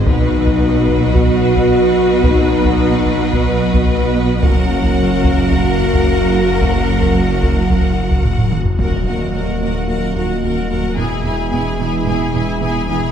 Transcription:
0.06 double bass section B1, detuned saw bass B1, cello section B2, trombone section F#3 B3, analog synth pad F#3 B3 F#4 D#5, french horn section D#4, viola section F#4, violin section B4 D#5, taiko
0.47 taiko
0.88 taiko
1.15 french horn section F#4, taiko
1.56 taiko
2.24 french horn section D#4, taiko
2.65 taiko
3.06 taiko
3.33 french horn section B3, taiko
3.74 taiko
3.89 french horn section B3
4.42 detuned saw bass F#1, double bass section F#1, cello section F#2, trombone section F#3 A#3, analog synth pad F#3 A#3 F#4 F#5, french horn section C#4, viola section F#4, violin section A#4 F#5, taiko
4.83 taiko
5.24 taiko
5.51 french horn section F#4, taiko
5.93 taiko
6.61 french horn section A#3, taiko
7.02 taiko
7.42 taiko
7.70 taiko
8.11 taiko
8.24 taiko low-mid
8.38 taiko low-mid
8.52 taiko mid
8.65 taiko low
8.78 detuned saw bass D#1, double bass section D#2, cello section D#2, trombone section F#3 A#3, analog synth pad F#3 A#3 F#4 D#5, viola section F#4, violin section A#4 F#5, taiko, impact
9.06 cello section D#2, double bass section D#2, viola section F#4, violin section A#4 F#5
9.33 cello section D#2, double bass section D#2, viola section F#4, violin section A#4 F#5
9.60 cello section D#2, double bass section D#2, viola section F#4, violin section A#4 F#5
9.88 cello section D#2, double bass section D#2, viola section F#4, violin section A#4 F#5
10.15 cello section D#2, double bass section D#2, viola section F#4, violin section A#4 F#5
10.42 cello section D#2, double bass section D#2, viola section F#4, violin section A#4 F#5
10.69 cello section D#2, double bass section D#2, viola section F#4, violin section A#4 F#5
10.96 detuned saw bass E1, double bass section E1, cello section E2, analog synth pad E3 B3 G#4 E5, trombone section E3 G#3, viola section E4, violin section G#4 G#5
11.24 double bass section E1, cello section E2, viola section E4, violin section G#4 G#5
11.51 double bass section E1, cello section E2, viola section E4, violin section G#4 G#5
11.79 double bass section E1, cello section E2, viola section E4, violin section G#4 G#5
12.06 double bass section E1, cello section E2, viola section E4, violin section G#4 G#5
12.33 double bass section E1, cello section E2, viola section E4, violin section G#4 G#5
12.61 double bass section E1, cello section E2, viola section E4, violin section G#4 G#5
12.88 double bass section E1, cello section E2, viola section E4, violin section G#4 G#5

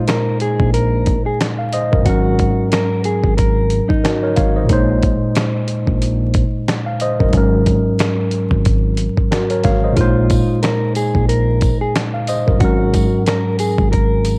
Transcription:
Already playing: tine electric piano A#2 G#3 D#4 C5 D#5
0.08 clean electric guitar A#4, snare, closed hi-hat
0.40 clean electric guitar G#4, closed hi-hat
0.60 fingered electric bass A#1, kick
0.74 clean electric guitar A#4, closed hi-hat
1.06 kick, closed hi-hat
1.26 clean electric guitar G#4
1.41 snare, closed hi-hat
1.59 tine electric piano F5
1.73 tine electric piano C5 D#5, closed hi-hat
1.92 fingered electric bass F#1, tine electric piano A#4, kick
2.01 tine electric piano G#2 F#3
2.06 fingered electric bass G#1, tine electric piano C#4 A#4, clean electric guitar F#4, kick, closed hi-hat
2.39 kick, closed hi-hat
2.72 clean electric guitar A#4, snare, closed hi-hat
3.04 clean electric guitar G#4, closed hi-hat
3.24 fingered electric bass G#1, kick
3.37 clean electric guitar A#4, kick, closed hi-hat
3.70 closed hi-hat
3.89 clean electric guitar D#4, kick
4.04 tine electric piano F#4 A#4, snare, closed hi-hat
4.23 tine electric piano A#4 C#5
4.36 fingered electric bass G#1, tine electric piano C#5 F5, kick, closed hi-hat
4.56 tine electric piano C5 D#5
4.64 tine electric piano A#2 G#3
4.69 fingered electric bass A#1, tine electric piano D#4 C5, kick, closed hi-hat
5.03 kick, closed hi-hat
5.35 snare, closed hi-hat
5.68 closed hi-hat
5.87 fingered electric bass A#1, kick
6.02 closed hi-hat
6.34 kick, closed hi-hat
6.68 snare, closed hi-hat
6.86 tine electric piano F5
7.00 tine electric piano C5 D#5, closed hi-hat
7.20 fingered electric bass F#1, tine electric piano A#4, kick
7.29 tine electric piano G#2 F#3, closed hi-hat
7.33 fingered electric bass G#1, tine electric piano C#4 A#4, kick
7.66 kick, closed hi-hat
7.99 snare, closed hi-hat
8.31 closed hi-hat
8.51 fingered electric bass G#1, kick
8.65 kick, closed hi-hat
8.97 closed hi-hat
9.17 kick
9.31 tine electric piano F#4 A#4, snare, closed hi-hat
9.50 tine electric piano A#4 C#5, closed hi-hat
9.64 fingered electric bass G#1, tine electric piano C#5 F5, kick, snare, closed hi-hat
9.84 tine electric piano C5 D#5
9.92 tine electric piano A#2 G#3
9.97 fingered electric bass A#1, tine electric piano D#4, clean electric guitar F4, kick, closed hi-hat
10.01 tine electric piano C5
10.30 kick, closed hi-hat, tambourine
10.63 clean electric guitar A#4, snare, closed hi-hat
10.95 clean electric guitar G#4, closed hi-hat, tambourine
11.15 fingered electric bass A#1, kick
11.29 clean electric guitar A#4, closed hi-hat
11.61 kick, closed hi-hat, tambourine
11.81 clean electric guitar G#4
11.96 snare, closed hi-hat
12.14 tine electric piano F5
12.27 tine electric piano C5 D#5, closed hi-hat, tambourine
12.47 fingered electric bass F#1, tine electric piano A#4, kick
12.56 tine electric piano G#2 F#3
12.60 fingered electric bass G#1, tine electric piano C#4, clean electric guitar F#4, kick, closed hi-hat
12.65 tine electric piano A#4
12.94 kick, closed hi-hat, tambourine
13.26 clean electric guitar A#4, snare, closed hi-hat
13.59 clean electric guitar G#4, closed hi-hat, tambourine
13.78 fingered electric bass G#1, kick
13.92 clean electric guitar A#4, kick, closed hi-hat
14.25 closed hi-hat, tambourine

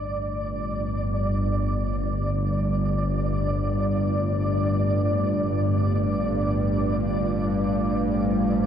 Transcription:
Already playing: synth drone G1 G2, ambient pad A3 F4, synth texture D5
1.47 ambient pad D5
2.31 ambient pad F5
7.42 ambient pad C5

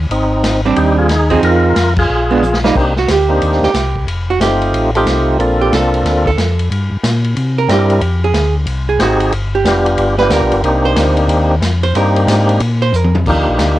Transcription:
0.09 tonewheel organ G#1 C4 D#4, ride
0.43 snare, hi-hat pedal, ride
0.65 hollow-body jazz guitar G3 C4 D4
0.76 tonewheel organ D#2 D#4 G4, ride
0.98 tonewheel organ F4 G#4
1.09 tonewheel organ D#4 G#4, snare, hi-hat pedal, ride
1.30 hollow-body jazz guitar F3 C4 D#4 G#4, kick, ride
1.42 tonewheel organ F2 F4 A#4, ride
1.76 tonewheel organ F2, snare, hi-hat pedal, ride
1.96 tonewheel organ F4 G#4, kick, crash
2.10 tonewheel organ A#1
2.31 hollow-body jazz guitar G#3 B3 D4
2.43 hi-hat pedal, high tom
2.54 snare
2.64 hollow-body jazz guitar G3 A#3 D#4, snare
2.75 tonewheel organ C2 A#3 C4 D4 D#4 G4, kick, crash
2.96 hollow-body jazz guitar F#4, snare
3.08 tonewheel organ D2, hollow-body jazz guitar G4, snare, hi-hat pedal, ride
3.29 tonewheel organ A#3 C4 D4 D#4 G4
3.42 tonewheel organ D#2, ride
3.52 snare
3.62 tonewheel organ D#2, hollow-body jazz guitar G4, snare
3.74 tonewheel organ C2, snare, hi-hat pedal, ride
3.95 kick
4.07 tonewheel organ F1, ride
4.30 hollow-body jazz guitar F#4
4.40 tonewheel organ G1 A3 C4 D#4 F4 G4, hollow-body jazz guitar G4, snare, hi-hat pedal, ride
4.61 ride
4.73 tonewheel organ A1, ride
4.95 tonewheel organ A3 C4 D#4 F4 G4, hollow-body jazz guitar G4, ride
5.06 tonewheel organ C2, snare, hi-hat pedal, ride
5.39 tonewheel organ A#1 A#3 C4 D4 F4 A4, ride
5.61 hollow-body jazz guitar G4
5.72 tonewheel organ C2, hollow-body jazz guitar A4, snare, hi-hat pedal, ride
5.94 ride
6.04 tonewheel organ D2, snare, ride
6.26 hollow-body jazz guitar A4, kick
6.37 tonewheel organ F2, snare, hi-hat pedal, ride
6.59 ride
6.71 tonewheel organ G2, ride
6.91 tonewheel organ G2
7.03 tonewheel organ A#2, snare, hi-hat pedal, ride
7.24 ride
7.36 tonewheel organ C3, ride
7.58 hollow-body jazz guitar A#4
7.69 tonewheel organ G2 G3 C4 D4 E4 A#4, hollow-body jazz guitar G4, snare, hi-hat pedal, ride
7.90 ride
8.01 tonewheel organ F2, ride
8.24 hollow-body jazz guitar G#4
8.34 tonewheel organ D2, snare, hi-hat pedal, ride
8.66 tonewheel organ C2, ride
8.89 hollow-body jazz guitar G#4
8.99 tonewheel organ G#1 C4 D#4 G4 G#4, hollow-body jazz guitar F#4, snare, hi-hat pedal, ride
9.20 ride
9.32 tonewheel organ G1, ride
9.55 hollow-body jazz guitar G4
9.65 tonewheel organ F1 G3 B3 D4 F4 G4, snare, hi-hat pedal, ride
9.86 ride
9.97 tonewheel organ G1, ride
10.18 tonewheel organ G3 B3 D4 F4 G4, hollow-body jazz guitar B4, snare
10.30 tonewheel organ D2, hollow-body jazz guitar A#4, snare, hi-hat pedal, ride
10.41 tonewheel organ B1
10.52 tonewheel organ G1, ride
10.63 tonewheel organ C2 A#3 C4 D4 D#4 G4, ride
10.85 hollow-body jazz guitar C5
10.96 tonewheel organ D2, snare, hi-hat pedal, ride
11.17 ride
11.28 tonewheel organ D#2, ride
11.61 tonewheel organ F2, snare, hi-hat pedal, ride
11.83 hollow-body jazz guitar C5, ride
11.95 tonewheel organ G2 A#3 C4 D4 D#4 G4, hollow-body jazz guitar A#4, ride
12.16 ride
12.27 tonewheel organ G#2, snare, hi-hat pedal, ride
12.49 ride
12.60 tonewheel organ A#2, ride
12.82 hollow-body jazz guitar C5
12.93 tonewheel organ F2, hollow-body jazz guitar A#4, hi-hat pedal
13.04 high tom
13.15 high tom
13.26 tonewheel organ D#2 A#3 D4 D#4 F4 G4, kick, crash
13.36 tonewheel organ D2
13.48 tonewheel organ A#1
13.59 tonewheel organ D2, snare, hi-hat pedal, ride

